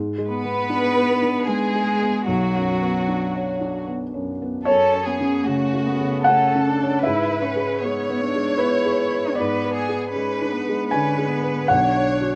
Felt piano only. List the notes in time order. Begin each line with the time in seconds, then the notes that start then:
Already playing: G#2
0.18 G#3
0.44 B3
0.70 D4
0.96 B4
1.22 D4
1.48 B3
1.75 G#3
2.02 B3
2.28 B1
2.55 F#2
2.81 B3
3.08 D4
3.35 C#5
3.61 D4
3.87 B3
4.14 F#2
4.42 B3
4.65 F#2 C#5
4.94 C#5
5.21 C#4
5.47 C#3
5.74 A3
6.01 C#3
6.24 F#5
6.29 A3
6.55 C#4
6.81 C#5
7.03 G#2 E5
7.30 B4
7.56 G#4
7.85 G#3
8.10 B3
8.35 G#3
8.58 B3 B4
8.85 G#4
9.12 B4
9.35 D5
9.40 G#2
9.64 B4
9.89 G#4
10.16 G#3
10.42 D4
10.69 G#3
10.91 D3 G#5
11.18 G#4
11.43 B4
11.68 B1 F#5
11.96 C#5
12.20 F#4